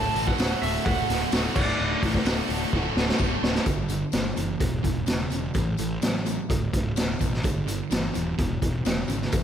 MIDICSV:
0, 0, Header, 1, 6, 480
1, 0, Start_track
1, 0, Key_signature, 2, "major"
1, 0, Tempo, 470588
1, 1824, Time_signature, 4, 2, 24, 8
1, 9622, End_track
2, 0, Start_track
2, 0, Title_t, "Electric slide guitar"
2, 0, Program_c, 0, 29
2, 0, Note_on_c, 0, 81, 114
2, 275, Note_on_c, 0, 78, 99
2, 288, Note_off_c, 0, 81, 0
2, 628, Note_on_c, 0, 76, 93
2, 643, Note_off_c, 0, 78, 0
2, 867, Note_on_c, 0, 78, 103
2, 876, Note_off_c, 0, 76, 0
2, 1587, Note_on_c, 0, 74, 83
2, 1604, Note_off_c, 0, 78, 0
2, 3218, Note_off_c, 0, 74, 0
2, 9622, End_track
3, 0, Start_track
3, 0, Title_t, "Overdriven electric guitar"
3, 0, Program_c, 1, 29
3, 3497, Note_on_c, 1, 66, 70
3, 3522, Note_on_c, 1, 57, 64
3, 3536, Note_on_c, 1, 50, 55
3, 3723, Note_off_c, 1, 66, 0
3, 3736, Note_off_c, 1, 57, 0
3, 3742, Note_off_c, 1, 50, 0
3, 9622, End_track
4, 0, Start_track
4, 0, Title_t, "Distorted electric guitar"
4, 0, Program_c, 2, 30
4, 0, Note_on_c, 2, 38, 100
4, 0, Note_on_c, 2, 45, 99
4, 0, Note_on_c, 2, 50, 101
4, 0, Note_on_c, 2, 57, 95
4, 0, Note_on_c, 2, 66, 101
4, 154, Note_off_c, 2, 66, 0
4, 158, Note_on_c, 2, 66, 71
4, 166, Note_off_c, 2, 57, 0
4, 170, Note_on_c, 2, 57, 59
4, 178, Note_off_c, 2, 50, 0
4, 182, Note_on_c, 2, 50, 59
4, 370, Note_off_c, 2, 45, 0
4, 382, Note_on_c, 2, 45, 76
4, 390, Note_off_c, 2, 50, 0
4, 394, Note_on_c, 2, 50, 83
4, 400, Note_off_c, 2, 57, 0
4, 404, Note_on_c, 2, 57, 75
4, 408, Note_off_c, 2, 66, 0
4, 412, Note_on_c, 2, 66, 78
4, 633, Note_off_c, 2, 66, 0
4, 637, Note_on_c, 2, 66, 73
4, 643, Note_off_c, 2, 57, 0
4, 647, Note_on_c, 2, 57, 71
4, 657, Note_off_c, 2, 50, 0
4, 661, Note_on_c, 2, 50, 52
4, 856, Note_off_c, 2, 45, 0
4, 857, Note_off_c, 2, 38, 0
4, 861, Note_off_c, 2, 50, 0
4, 861, Note_on_c, 2, 38, 86
4, 868, Note_off_c, 2, 57, 0
4, 868, Note_on_c, 2, 45, 91
4, 874, Note_on_c, 2, 50, 83
4, 875, Note_off_c, 2, 66, 0
4, 880, Note_on_c, 2, 57, 92
4, 887, Note_on_c, 2, 66, 96
4, 1091, Note_off_c, 2, 66, 0
4, 1103, Note_on_c, 2, 66, 74
4, 1108, Note_off_c, 2, 57, 0
4, 1118, Note_off_c, 2, 50, 0
4, 1120, Note_on_c, 2, 57, 67
4, 1130, Note_on_c, 2, 50, 61
4, 1323, Note_off_c, 2, 45, 0
4, 1333, Note_off_c, 2, 50, 0
4, 1335, Note_on_c, 2, 45, 75
4, 1340, Note_off_c, 2, 57, 0
4, 1342, Note_off_c, 2, 38, 0
4, 1346, Note_on_c, 2, 50, 70
4, 1352, Note_on_c, 2, 57, 79
4, 1353, Note_off_c, 2, 66, 0
4, 1365, Note_on_c, 2, 66, 77
4, 1562, Note_off_c, 2, 66, 0
4, 1565, Note_off_c, 2, 45, 0
4, 1570, Note_off_c, 2, 50, 0
4, 1570, Note_off_c, 2, 57, 0
4, 1574, Note_on_c, 2, 66, 92
4, 1582, Note_on_c, 2, 57, 81
4, 1592, Note_on_c, 2, 50, 85
4, 1598, Note_on_c, 2, 45, 85
4, 1600, Note_on_c, 2, 38, 83
4, 1803, Note_off_c, 2, 38, 0
4, 1812, Note_off_c, 2, 45, 0
4, 1815, Note_on_c, 2, 38, 91
4, 1817, Note_off_c, 2, 50, 0
4, 1824, Note_on_c, 2, 45, 93
4, 1827, Note_off_c, 2, 57, 0
4, 1830, Note_off_c, 2, 66, 0
4, 1830, Note_on_c, 2, 50, 91
4, 1840, Note_on_c, 2, 57, 102
4, 1843, Note_on_c, 2, 66, 108
4, 2035, Note_off_c, 2, 66, 0
4, 2048, Note_on_c, 2, 66, 67
4, 2051, Note_off_c, 2, 57, 0
4, 2063, Note_off_c, 2, 50, 0
4, 2063, Note_on_c, 2, 57, 68
4, 2076, Note_on_c, 2, 50, 53
4, 2274, Note_off_c, 2, 45, 0
4, 2280, Note_off_c, 2, 50, 0
4, 2286, Note_on_c, 2, 45, 84
4, 2293, Note_on_c, 2, 50, 77
4, 2295, Note_off_c, 2, 57, 0
4, 2297, Note_off_c, 2, 38, 0
4, 2300, Note_off_c, 2, 66, 0
4, 2307, Note_on_c, 2, 57, 83
4, 2312, Note_on_c, 2, 66, 83
4, 2516, Note_off_c, 2, 66, 0
4, 2528, Note_on_c, 2, 66, 65
4, 2531, Note_off_c, 2, 57, 0
4, 2539, Note_off_c, 2, 50, 0
4, 2543, Note_on_c, 2, 57, 65
4, 2552, Note_on_c, 2, 50, 58
4, 2760, Note_off_c, 2, 45, 0
4, 2769, Note_on_c, 2, 38, 82
4, 2772, Note_off_c, 2, 50, 0
4, 2772, Note_on_c, 2, 45, 82
4, 2774, Note_off_c, 2, 57, 0
4, 2783, Note_off_c, 2, 66, 0
4, 2784, Note_on_c, 2, 50, 89
4, 2787, Note_on_c, 2, 57, 83
4, 2795, Note_on_c, 2, 66, 87
4, 2994, Note_off_c, 2, 66, 0
4, 3006, Note_off_c, 2, 57, 0
4, 3007, Note_on_c, 2, 66, 73
4, 3019, Note_on_c, 2, 57, 66
4, 3024, Note_off_c, 2, 50, 0
4, 3037, Note_on_c, 2, 50, 59
4, 3233, Note_off_c, 2, 45, 0
4, 3244, Note_off_c, 2, 50, 0
4, 3245, Note_on_c, 2, 45, 71
4, 3252, Note_off_c, 2, 57, 0
4, 3253, Note_off_c, 2, 38, 0
4, 3257, Note_on_c, 2, 50, 79
4, 3260, Note_off_c, 2, 66, 0
4, 3265, Note_on_c, 2, 57, 71
4, 3272, Note_on_c, 2, 66, 79
4, 3717, Note_off_c, 2, 45, 0
4, 3723, Note_off_c, 2, 50, 0
4, 3727, Note_off_c, 2, 57, 0
4, 3727, Note_on_c, 2, 43, 69
4, 3730, Note_off_c, 2, 66, 0
4, 3737, Note_on_c, 2, 50, 79
4, 3949, Note_off_c, 2, 43, 0
4, 3954, Note_off_c, 2, 50, 0
4, 3976, Note_on_c, 2, 43, 56
4, 3980, Note_on_c, 2, 50, 70
4, 4194, Note_off_c, 2, 43, 0
4, 4195, Note_off_c, 2, 50, 0
4, 4215, Note_on_c, 2, 43, 81
4, 4219, Note_on_c, 2, 52, 83
4, 4433, Note_off_c, 2, 43, 0
4, 4435, Note_off_c, 2, 52, 0
4, 4457, Note_on_c, 2, 43, 60
4, 4465, Note_on_c, 2, 52, 69
4, 4675, Note_off_c, 2, 43, 0
4, 4679, Note_off_c, 2, 52, 0
4, 4688, Note_on_c, 2, 40, 73
4, 4700, Note_on_c, 2, 47, 74
4, 4911, Note_off_c, 2, 40, 0
4, 4917, Note_off_c, 2, 47, 0
4, 4924, Note_on_c, 2, 40, 68
4, 4927, Note_on_c, 2, 47, 81
4, 5149, Note_off_c, 2, 40, 0
4, 5151, Note_off_c, 2, 47, 0
4, 5168, Note_on_c, 2, 40, 64
4, 5177, Note_on_c, 2, 49, 86
4, 5392, Note_off_c, 2, 40, 0
4, 5396, Note_off_c, 2, 49, 0
4, 5416, Note_on_c, 2, 40, 67
4, 5420, Note_on_c, 2, 49, 74
4, 5636, Note_off_c, 2, 40, 0
4, 5639, Note_off_c, 2, 49, 0
4, 5655, Note_on_c, 2, 45, 76
4, 5660, Note_on_c, 2, 52, 83
4, 5877, Note_off_c, 2, 45, 0
4, 5879, Note_off_c, 2, 52, 0
4, 5904, Note_on_c, 2, 45, 62
4, 5905, Note_on_c, 2, 52, 74
4, 6122, Note_off_c, 2, 45, 0
4, 6122, Note_off_c, 2, 52, 0
4, 6142, Note_on_c, 2, 45, 68
4, 6151, Note_on_c, 2, 54, 82
4, 6361, Note_off_c, 2, 45, 0
4, 6366, Note_off_c, 2, 54, 0
4, 6377, Note_on_c, 2, 45, 64
4, 6387, Note_on_c, 2, 54, 75
4, 6600, Note_off_c, 2, 45, 0
4, 6604, Note_off_c, 2, 54, 0
4, 6631, Note_on_c, 2, 38, 68
4, 6633, Note_on_c, 2, 45, 76
4, 6847, Note_off_c, 2, 38, 0
4, 6848, Note_off_c, 2, 45, 0
4, 6869, Note_on_c, 2, 38, 71
4, 6874, Note_on_c, 2, 45, 83
4, 7087, Note_off_c, 2, 38, 0
4, 7089, Note_off_c, 2, 45, 0
4, 7107, Note_on_c, 2, 38, 78
4, 7110, Note_on_c, 2, 47, 80
4, 7326, Note_off_c, 2, 38, 0
4, 7328, Note_off_c, 2, 47, 0
4, 7345, Note_on_c, 2, 38, 74
4, 7352, Note_on_c, 2, 47, 74
4, 7566, Note_off_c, 2, 38, 0
4, 7569, Note_off_c, 2, 47, 0
4, 7585, Note_on_c, 2, 43, 81
4, 7589, Note_on_c, 2, 50, 96
4, 7806, Note_off_c, 2, 43, 0
4, 7808, Note_off_c, 2, 50, 0
4, 7822, Note_on_c, 2, 43, 68
4, 7830, Note_on_c, 2, 50, 72
4, 8045, Note_off_c, 2, 43, 0
4, 8049, Note_off_c, 2, 50, 0
4, 8058, Note_on_c, 2, 43, 82
4, 8063, Note_on_c, 2, 52, 84
4, 8283, Note_off_c, 2, 43, 0
4, 8286, Note_off_c, 2, 52, 0
4, 8298, Note_on_c, 2, 43, 64
4, 8301, Note_on_c, 2, 52, 67
4, 8524, Note_off_c, 2, 43, 0
4, 8525, Note_off_c, 2, 52, 0
4, 8546, Note_on_c, 2, 40, 65
4, 8546, Note_on_c, 2, 47, 82
4, 8768, Note_off_c, 2, 40, 0
4, 8768, Note_off_c, 2, 47, 0
4, 8795, Note_on_c, 2, 40, 64
4, 8797, Note_on_c, 2, 47, 72
4, 9013, Note_off_c, 2, 40, 0
4, 9014, Note_off_c, 2, 47, 0
4, 9027, Note_on_c, 2, 40, 68
4, 9032, Note_on_c, 2, 49, 87
4, 9249, Note_off_c, 2, 40, 0
4, 9252, Note_off_c, 2, 49, 0
4, 9265, Note_on_c, 2, 40, 66
4, 9270, Note_on_c, 2, 49, 78
4, 9488, Note_off_c, 2, 40, 0
4, 9491, Note_off_c, 2, 49, 0
4, 9506, Note_on_c, 2, 45, 71
4, 9509, Note_on_c, 2, 52, 83
4, 9622, Note_off_c, 2, 45, 0
4, 9622, Note_off_c, 2, 52, 0
4, 9622, End_track
5, 0, Start_track
5, 0, Title_t, "Picked electric bass"
5, 0, Program_c, 3, 34
5, 153, Note_on_c, 3, 33, 98
5, 303, Note_off_c, 3, 33, 0
5, 392, Note_on_c, 3, 26, 89
5, 541, Note_off_c, 3, 26, 0
5, 634, Note_on_c, 3, 26, 88
5, 782, Note_off_c, 3, 26, 0
5, 879, Note_on_c, 3, 26, 94
5, 1024, Note_off_c, 3, 26, 0
5, 1121, Note_on_c, 3, 26, 89
5, 1265, Note_off_c, 3, 26, 0
5, 1354, Note_on_c, 3, 26, 93
5, 1500, Note_off_c, 3, 26, 0
5, 1590, Note_on_c, 3, 26, 90
5, 1737, Note_off_c, 3, 26, 0
5, 1828, Note_on_c, 3, 26, 93
5, 1975, Note_off_c, 3, 26, 0
5, 2066, Note_on_c, 3, 33, 93
5, 2213, Note_off_c, 3, 33, 0
5, 2296, Note_on_c, 3, 26, 83
5, 2446, Note_off_c, 3, 26, 0
5, 2540, Note_on_c, 3, 26, 93
5, 2689, Note_off_c, 3, 26, 0
5, 2790, Note_on_c, 3, 26, 92
5, 2935, Note_off_c, 3, 26, 0
5, 3014, Note_on_c, 3, 26, 87
5, 3164, Note_off_c, 3, 26, 0
5, 3262, Note_on_c, 3, 26, 92
5, 3410, Note_off_c, 3, 26, 0
5, 3493, Note_on_c, 3, 26, 85
5, 3644, Note_off_c, 3, 26, 0
5, 3740, Note_on_c, 3, 31, 82
5, 4105, Note_off_c, 3, 31, 0
5, 4214, Note_on_c, 3, 31, 76
5, 4399, Note_off_c, 3, 31, 0
5, 4453, Note_on_c, 3, 30, 79
5, 4638, Note_off_c, 3, 30, 0
5, 4695, Note_on_c, 3, 28, 81
5, 4881, Note_off_c, 3, 28, 0
5, 4939, Note_on_c, 3, 28, 77
5, 5123, Note_off_c, 3, 28, 0
5, 5171, Note_on_c, 3, 28, 85
5, 5358, Note_off_c, 3, 28, 0
5, 5407, Note_on_c, 3, 28, 76
5, 5597, Note_off_c, 3, 28, 0
5, 5662, Note_on_c, 3, 33, 85
5, 5847, Note_off_c, 3, 33, 0
5, 5903, Note_on_c, 3, 33, 79
5, 6088, Note_off_c, 3, 33, 0
5, 6134, Note_on_c, 3, 33, 81
5, 6506, Note_off_c, 3, 33, 0
5, 6629, Note_on_c, 3, 26, 86
5, 6812, Note_off_c, 3, 26, 0
5, 6869, Note_on_c, 3, 26, 79
5, 7053, Note_off_c, 3, 26, 0
5, 7094, Note_on_c, 3, 26, 88
5, 7284, Note_off_c, 3, 26, 0
5, 7354, Note_on_c, 3, 33, 80
5, 7589, Note_on_c, 3, 31, 82
5, 7604, Note_off_c, 3, 33, 0
5, 7958, Note_off_c, 3, 31, 0
5, 8073, Note_on_c, 3, 31, 74
5, 8258, Note_off_c, 3, 31, 0
5, 8318, Note_on_c, 3, 27, 79
5, 8501, Note_off_c, 3, 27, 0
5, 8554, Note_on_c, 3, 28, 91
5, 8738, Note_off_c, 3, 28, 0
5, 8792, Note_on_c, 3, 28, 72
5, 8977, Note_off_c, 3, 28, 0
5, 9032, Note_on_c, 3, 28, 85
5, 9217, Note_off_c, 3, 28, 0
5, 9261, Note_on_c, 3, 32, 85
5, 9451, Note_off_c, 3, 32, 0
5, 9515, Note_on_c, 3, 33, 85
5, 9622, Note_off_c, 3, 33, 0
5, 9622, End_track
6, 0, Start_track
6, 0, Title_t, "Drums"
6, 162, Note_on_c, 9, 46, 60
6, 264, Note_off_c, 9, 46, 0
6, 281, Note_on_c, 9, 36, 77
6, 383, Note_off_c, 9, 36, 0
6, 392, Note_on_c, 9, 54, 85
6, 403, Note_on_c, 9, 46, 87
6, 409, Note_on_c, 9, 38, 114
6, 494, Note_off_c, 9, 54, 0
6, 505, Note_off_c, 9, 46, 0
6, 511, Note_off_c, 9, 38, 0
6, 642, Note_on_c, 9, 46, 67
6, 744, Note_off_c, 9, 46, 0
6, 877, Note_on_c, 9, 36, 118
6, 877, Note_on_c, 9, 46, 79
6, 979, Note_off_c, 9, 36, 0
6, 979, Note_off_c, 9, 46, 0
6, 1121, Note_on_c, 9, 46, 61
6, 1127, Note_on_c, 9, 38, 36
6, 1223, Note_off_c, 9, 46, 0
6, 1229, Note_off_c, 9, 38, 0
6, 1345, Note_on_c, 9, 54, 87
6, 1349, Note_on_c, 9, 46, 80
6, 1355, Note_on_c, 9, 38, 105
6, 1447, Note_off_c, 9, 54, 0
6, 1451, Note_off_c, 9, 46, 0
6, 1457, Note_off_c, 9, 38, 0
6, 1589, Note_on_c, 9, 49, 95
6, 1591, Note_on_c, 9, 36, 100
6, 1691, Note_off_c, 9, 49, 0
6, 1693, Note_off_c, 9, 36, 0
6, 2068, Note_on_c, 9, 36, 76
6, 2069, Note_on_c, 9, 46, 55
6, 2170, Note_off_c, 9, 36, 0
6, 2171, Note_off_c, 9, 46, 0
6, 2188, Note_on_c, 9, 36, 80
6, 2198, Note_on_c, 9, 38, 31
6, 2290, Note_off_c, 9, 36, 0
6, 2299, Note_on_c, 9, 54, 81
6, 2300, Note_off_c, 9, 38, 0
6, 2306, Note_on_c, 9, 46, 79
6, 2312, Note_on_c, 9, 38, 118
6, 2401, Note_off_c, 9, 54, 0
6, 2408, Note_off_c, 9, 46, 0
6, 2414, Note_off_c, 9, 38, 0
6, 2550, Note_on_c, 9, 46, 61
6, 2652, Note_off_c, 9, 46, 0
6, 2785, Note_on_c, 9, 36, 103
6, 2887, Note_off_c, 9, 36, 0
6, 3027, Note_on_c, 9, 38, 83
6, 3129, Note_off_c, 9, 38, 0
6, 3150, Note_on_c, 9, 38, 73
6, 3247, Note_on_c, 9, 54, 98
6, 3252, Note_off_c, 9, 38, 0
6, 3261, Note_on_c, 9, 36, 81
6, 3349, Note_off_c, 9, 54, 0
6, 3363, Note_off_c, 9, 36, 0
6, 3505, Note_on_c, 9, 38, 98
6, 3607, Note_off_c, 9, 38, 0
6, 3624, Note_on_c, 9, 38, 89
6, 3726, Note_off_c, 9, 38, 0
6, 3732, Note_on_c, 9, 42, 72
6, 3732, Note_on_c, 9, 54, 59
6, 3736, Note_on_c, 9, 36, 97
6, 3834, Note_off_c, 9, 42, 0
6, 3834, Note_off_c, 9, 54, 0
6, 3838, Note_off_c, 9, 36, 0
6, 3963, Note_on_c, 9, 54, 66
6, 3973, Note_on_c, 9, 42, 56
6, 4065, Note_off_c, 9, 54, 0
6, 4075, Note_off_c, 9, 42, 0
6, 4202, Note_on_c, 9, 54, 80
6, 4211, Note_on_c, 9, 42, 80
6, 4218, Note_on_c, 9, 38, 102
6, 4304, Note_off_c, 9, 54, 0
6, 4313, Note_off_c, 9, 42, 0
6, 4320, Note_off_c, 9, 38, 0
6, 4451, Note_on_c, 9, 54, 61
6, 4459, Note_on_c, 9, 42, 59
6, 4553, Note_off_c, 9, 54, 0
6, 4561, Note_off_c, 9, 42, 0
6, 4695, Note_on_c, 9, 42, 70
6, 4696, Note_on_c, 9, 36, 101
6, 4797, Note_off_c, 9, 42, 0
6, 4798, Note_off_c, 9, 36, 0
6, 4937, Note_on_c, 9, 36, 75
6, 4939, Note_on_c, 9, 42, 56
6, 5039, Note_off_c, 9, 36, 0
6, 5041, Note_off_c, 9, 42, 0
6, 5164, Note_on_c, 9, 54, 79
6, 5176, Note_on_c, 9, 42, 72
6, 5182, Note_on_c, 9, 38, 100
6, 5266, Note_off_c, 9, 54, 0
6, 5278, Note_off_c, 9, 42, 0
6, 5284, Note_off_c, 9, 38, 0
6, 5409, Note_on_c, 9, 54, 62
6, 5421, Note_on_c, 9, 42, 51
6, 5511, Note_off_c, 9, 54, 0
6, 5523, Note_off_c, 9, 42, 0
6, 5649, Note_on_c, 9, 54, 56
6, 5658, Note_on_c, 9, 42, 72
6, 5660, Note_on_c, 9, 36, 101
6, 5751, Note_off_c, 9, 54, 0
6, 5760, Note_off_c, 9, 42, 0
6, 5762, Note_off_c, 9, 36, 0
6, 5889, Note_on_c, 9, 54, 61
6, 5899, Note_on_c, 9, 42, 54
6, 5991, Note_off_c, 9, 54, 0
6, 6001, Note_off_c, 9, 42, 0
6, 6139, Note_on_c, 9, 54, 75
6, 6144, Note_on_c, 9, 42, 79
6, 6150, Note_on_c, 9, 38, 100
6, 6241, Note_off_c, 9, 54, 0
6, 6246, Note_off_c, 9, 42, 0
6, 6252, Note_off_c, 9, 38, 0
6, 6381, Note_on_c, 9, 54, 65
6, 6388, Note_on_c, 9, 42, 57
6, 6483, Note_off_c, 9, 54, 0
6, 6490, Note_off_c, 9, 42, 0
6, 6628, Note_on_c, 9, 36, 104
6, 6634, Note_on_c, 9, 42, 79
6, 6730, Note_off_c, 9, 36, 0
6, 6736, Note_off_c, 9, 42, 0
6, 6869, Note_on_c, 9, 36, 77
6, 6870, Note_on_c, 9, 42, 64
6, 6971, Note_off_c, 9, 36, 0
6, 6972, Note_off_c, 9, 42, 0
6, 7100, Note_on_c, 9, 54, 90
6, 7110, Note_on_c, 9, 42, 77
6, 7116, Note_on_c, 9, 38, 96
6, 7202, Note_off_c, 9, 54, 0
6, 7212, Note_off_c, 9, 42, 0
6, 7218, Note_off_c, 9, 38, 0
6, 7335, Note_on_c, 9, 54, 73
6, 7352, Note_on_c, 9, 36, 70
6, 7352, Note_on_c, 9, 42, 59
6, 7437, Note_off_c, 9, 54, 0
6, 7454, Note_off_c, 9, 36, 0
6, 7454, Note_off_c, 9, 42, 0
6, 7484, Note_on_c, 9, 38, 30
6, 7583, Note_on_c, 9, 54, 64
6, 7586, Note_off_c, 9, 38, 0
6, 7593, Note_on_c, 9, 36, 98
6, 7594, Note_on_c, 9, 42, 75
6, 7685, Note_off_c, 9, 54, 0
6, 7695, Note_off_c, 9, 36, 0
6, 7696, Note_off_c, 9, 42, 0
6, 7828, Note_on_c, 9, 54, 68
6, 7836, Note_on_c, 9, 42, 61
6, 7930, Note_off_c, 9, 54, 0
6, 7938, Note_off_c, 9, 42, 0
6, 8065, Note_on_c, 9, 54, 86
6, 8077, Note_on_c, 9, 42, 84
6, 8084, Note_on_c, 9, 38, 110
6, 8167, Note_off_c, 9, 54, 0
6, 8179, Note_off_c, 9, 42, 0
6, 8186, Note_off_c, 9, 38, 0
6, 8305, Note_on_c, 9, 54, 71
6, 8314, Note_on_c, 9, 42, 61
6, 8407, Note_off_c, 9, 54, 0
6, 8416, Note_off_c, 9, 42, 0
6, 8553, Note_on_c, 9, 42, 78
6, 8554, Note_on_c, 9, 36, 105
6, 8655, Note_off_c, 9, 42, 0
6, 8656, Note_off_c, 9, 36, 0
6, 8794, Note_on_c, 9, 36, 74
6, 8794, Note_on_c, 9, 42, 62
6, 8896, Note_off_c, 9, 36, 0
6, 8896, Note_off_c, 9, 42, 0
6, 9027, Note_on_c, 9, 54, 93
6, 9037, Note_on_c, 9, 42, 74
6, 9043, Note_on_c, 9, 38, 100
6, 9129, Note_off_c, 9, 54, 0
6, 9139, Note_off_c, 9, 42, 0
6, 9145, Note_off_c, 9, 38, 0
6, 9260, Note_on_c, 9, 54, 68
6, 9277, Note_on_c, 9, 42, 50
6, 9362, Note_off_c, 9, 54, 0
6, 9379, Note_off_c, 9, 42, 0
6, 9403, Note_on_c, 9, 38, 29
6, 9505, Note_off_c, 9, 38, 0
6, 9506, Note_on_c, 9, 54, 60
6, 9510, Note_on_c, 9, 42, 74
6, 9514, Note_on_c, 9, 36, 97
6, 9608, Note_off_c, 9, 54, 0
6, 9612, Note_off_c, 9, 42, 0
6, 9616, Note_off_c, 9, 36, 0
6, 9622, End_track
0, 0, End_of_file